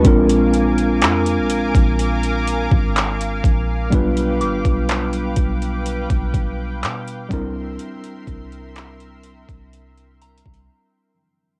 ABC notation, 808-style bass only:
X:1
M:4/4
L:1/16
Q:1/4=62
K:Cm
V:1 name="808-style bass" clef=bass
B,,,4 F,,3/2 B,,,3/2 B,,,4 A,,,3 B,,,2 | =B,,,2 A,,, B,,,3 B,,,3 B,,,3 =B,,2 C,,2 | z2 C,,4- C,, C,,4 C,, z4 |]